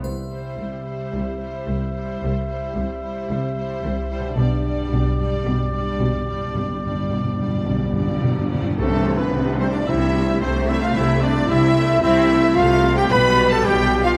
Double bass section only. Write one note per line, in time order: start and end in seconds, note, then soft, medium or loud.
0.04 0.49 C2 soft
0.59 1.04 C2 soft
1.14 1.59 C2 soft
1.67 2.13 C2 soft
2.21 2.67 C2 soft
2.74 3.20 C2 soft
3.29 3.75 C2 soft
3.81 4.27 C2 medium
4.36 4.82 B1 medium
4.90 5.36 B1 medium
5.45 5.91 B1 medium
5.99 6.46 B1 medium
6.55 7.02 B1 medium
7.12 7.58 B1 soft
7.67 8.14 B1 soft
8.23 8.70 B1 medium
8.79 9.27 C2 medium
9.32 9.81 C2 medium
9.88 10.36 C2 medium
10.42 10.89 C2 medium
10.94 11.42 C2 medium
11.47 11.96 C2 medium
12.02 12.50 C2 medium
12.57 13.05 C2 loud
13.12 13.59 B1 loud
13.65 14.12 B1 loud